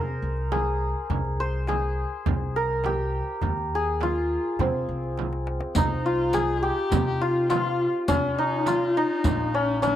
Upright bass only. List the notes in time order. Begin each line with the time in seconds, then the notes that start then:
Already playing: C3
0.22 C2
1.10 C2
2.27 C2
3.42 D#2
4.59 C3
4.89 C2
5.76 C2
6.92 C3
8.09 C3
9.24 A#1